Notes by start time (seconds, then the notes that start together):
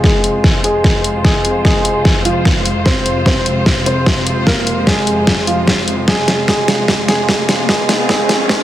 Already playing: F2 C3 G#3 F4 C5
0.04 G#3 G#4, kick, snare
0.24 closed hi-hat
0.44 kick, snare
0.64 G#3 G#4, closed hi-hat
0.84 kick, snare
1.04 closed hi-hat
1.25 G#3 G#4, kick, snare
1.45 closed hi-hat
1.65 G#3 G#4, kick, snare
1.85 closed hi-hat
2.05 kick, snare
2.25 F3 F4, closed hi-hat
2.45 kick, snare
2.65 closed hi-hat
2.86 C4 C5, kick, snare
3.06 closed hi-hat
3.26 C4 C5, kick, snare
3.46 closed hi-hat
3.66 kick, snare
3.86 C4 C5, closed hi-hat
4.06 kick, snare
4.27 closed hi-hat
4.47 A#3 A#4, kick, snare
4.67 closed hi-hat
4.87 G#3 G#4, kick, snare
5.07 closed hi-hat
5.27 kick, snare
5.47 F3 F4, closed hi-hat
5.67 kick, snare
5.88 closed hi-hat
6.08 G#3 F4 G#4, kick, snare, riser
6.28 snare, closed hi-hat
6.48 G#3 G#4, kick, snare
6.68 snare, closed hi-hat
6.88 kick, snare
7.08 G#3 G#4, snare, closed hi-hat
7.29 kick, snare
7.49 snare, closed hi-hat
7.69 G#3 G#4, kick, snare
7.89 snare, closed hi-hat
8.09 G#3 G#4, kick, snare
8.29 snare, closed hi-hat
8.49 kick, snare